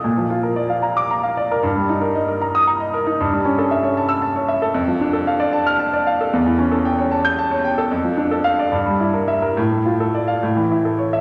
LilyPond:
\new Staff \with { instrumentName = "Grand piano" } { \time 6/8 \key d \minor \tempo 4. = 76 << { r4. r16 d'''8 r8. | r4. r16 ees'''8 r8. | r4. r16 e'''8 r8. | r4. r16 f'''8 r8. |
r4. r16 g'''8 r8. | r4 f''8 r4 e''8 | r4 r16 f''16 r4 r16 e''16 | } \\ { bes,16 f16 f'16 bes'16 d''16 f''16 bes''8 bes''16 f''16 d''16 bes'16 | g,16 g16 ees'16 bes'16 ees''16 bes'16 bes''8 bes''16 ees''16 bes'16 ees'16 | g,16 g16 cis'16 a'16 e''16 cis''16 a''8 a''16 cis''16 e''16 a'16 | f,16 f16 d'16 a'16 f''16 d''16 a''8 a''16 d''16 f''16 a'16 |
e,16 e16 cis'16 a'16 g''16 cis''16 a''8 a''16 cis''16 g''16 a'16 | f,16 f16 d'16 a'8 d''16 g,16 g16 e'16 bes'8 bes'16 | a,16 a16 f'16 a'16 d''8 a,16 e16 e'16 a'16 cis''8 | } >> }